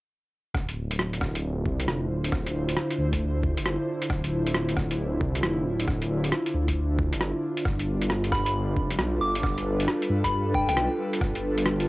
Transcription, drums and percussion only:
0.54 kick loud
0.54 cross-stick medium
0.69 closed hi-hat soft
0.91 closed hi-hat medium
0.99 cross-stick loud
1.13 closed hi-hat soft
1.21 kick loud
1.21 cross-stick medium
1.35 closed hi-hat medium
1.66 kick loud
1.80 closed hi-hat medium
1.88 cross-stick loud
2.24 closed hi-hat medium
2.32 kick loud
2.32 cross-stick soft
2.46 closed hi-hat soft
2.69 closed hi-hat medium
2.77 cross-stick loud
2.90 closed hi-hat soft
3.13 kick medium
3.13 closed hi-hat medium
3.43 kick loud
3.57 closed hi-hat medium
3.65 cross-stick loud
4.02 closed hi-hat medium
4.10 kick loud
4.10 cross-stick soft
4.24 closed hi-hat soft
4.47 closed hi-hat medium
4.54 cross-stick loud
4.69 closed hi-hat soft
4.77 kick loud
4.77 cross-stick medium
4.91 closed hi-hat medium
5.21 kick loud
5.35 closed hi-hat medium
5.43 cross-stick loud
5.80 closed hi-hat medium
5.88 kick loud
5.88 cross-stick soft
6.02 closed hi-hat soft
6.24 closed hi-hat soft
6.32 cross-stick loud
6.46 closed hi-hat soft
6.68 kick medium
6.68 closed hi-hat medium
6.99 kick loud
7.13 closed hi-hat medium
7.21 cross-stick loud
7.57 closed hi-hat medium
7.65 kick loud
7.65 cross-stick soft
7.79 closed hi-hat soft
8.02 closed hi-hat medium
8.10 cross-stick loud
8.24 closed hi-hat soft
8.32 kick loud
8.32 cross-stick medium
8.46 closed hi-hat medium
8.76 kick loud
8.90 closed hi-hat medium
8.99 cross-stick loud
9.35 closed hi-hat medium
9.43 kick loud
9.43 cross-stick soft
9.58 closed hi-hat soft
9.80 closed hi-hat medium
9.88 cross-stick loud
10.02 closed hi-hat soft
10.24 kick medium
10.24 closed hi-hat medium
10.54 kick loud
10.69 closed hi-hat medium
10.77 cross-stick loud
11.13 closed hi-hat medium
11.21 kick loud
11.21 cross-stick medium
11.35 closed hi-hat soft
11.58 closed hi-hat medium
11.66 cross-stick loud
11.80 closed hi-hat soft

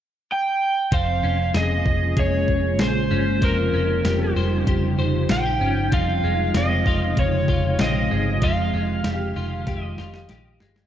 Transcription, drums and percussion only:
0.92 kick medium
0.92 closed hi-hat medium
1.54 snare medium
1.54 closed hi-hat medium
1.86 kick medium
2.17 kick medium
2.17 closed hi-hat medium
2.48 kick medium
2.79 snare medium
2.79 closed hi-hat medium
3.42 kick medium
3.42 closed hi-hat medium
4.05 snare medium
4.05 closed hi-hat medium
4.67 kick medium
4.67 closed hi-hat medium
5.29 snare loud
5.29 closed hi-hat medium
5.92 kick medium
5.92 closed hi-hat medium
6.54 snare medium
6.54 closed hi-hat medium
6.86 kick medium
7.17 kick medium
7.17 closed hi-hat medium
7.48 kick medium
7.79 snare loud
7.79 closed hi-hat medium
8.42 kick medium
8.42 closed hi-hat medium
9.04 snare medium
9.04 closed hi-hat medium
9.67 kick medium
9.67 snare soft
9.67 closed hi-hat medium
9.98 snare medium
10.14 snare medium
10.29 snare medium
10.29 closed hi-hat medium
10.60 snare medium
10.76 snare medium

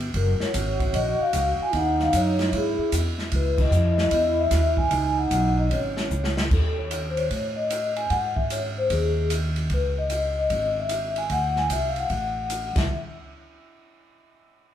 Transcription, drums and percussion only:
0.00 ride soft
0.14 kick soft
0.14 ride medium
0.40 snare medium
0.54 kick soft
0.54 hi-hat pedal medium
0.54 ride medium
0.80 kick medium
0.80 ride soft
0.94 kick soft
0.94 ride medium
1.33 kick soft
1.33 hi-hat pedal medium
1.33 ride medium
1.73 kick soft
1.73 ride medium
1.99 snare soft
2.13 kick soft
2.13 hi-hat pedal medium
2.13 ride medium
2.39 snare medium
2.39 ride soft
2.53 kick soft
2.53 ride medium
2.92 kick soft
2.92 hi-hat pedal medium
2.92 ride medium
3.19 snare soft
3.32 kick soft
3.32 ride medium
3.58 kick medium
3.58 crash medium
3.72 hi-hat pedal medium
3.98 snare medium
4.11 kick soft
4.11 ride medium
4.51 kick soft
4.51 snare soft
4.51 hi-hat pedal medium
4.51 ride medium
4.77 kick medium
4.91 kick soft
4.91 ride medium
5.31 kick soft
5.31 hi-hat pedal medium
5.31 ride medium
5.71 kick soft
5.71 ride medium
5.97 snare medium
6.11 hi-hat pedal soft
6.24 snare medium
6.37 snare medium
6.51 kick medium
6.51 crash medium
6.91 hi-hat pedal medium
6.91 ride medium
7.17 ride soft
7.31 kick soft
7.31 ride medium
7.70 hi-hat pedal medium
7.70 ride medium
7.96 ride soft
8.10 kick soft
8.10 ride medium
8.37 kick medium
8.50 hi-hat pedal medium
8.50 ride medium
8.90 kick soft
8.90 ride medium
9.30 hi-hat pedal medium
9.30 ride medium
9.56 ride soft
9.70 kick soft
9.70 ride medium
10.10 hi-hat pedal medium
10.10 ride medium
10.50 kick soft
10.50 ride medium
10.89 hi-hat pedal medium
10.89 ride medium
11.16 ride soft
11.30 kick soft
11.30 ride medium
11.56 snare soft
11.70 hi-hat pedal medium
11.70 ride medium
11.96 ride soft
12.10 kick soft
12.10 ride soft
12.50 hi-hat pedal medium
12.50 ride medium
12.76 kick medium
12.76 snare medium
12.76 crash medium

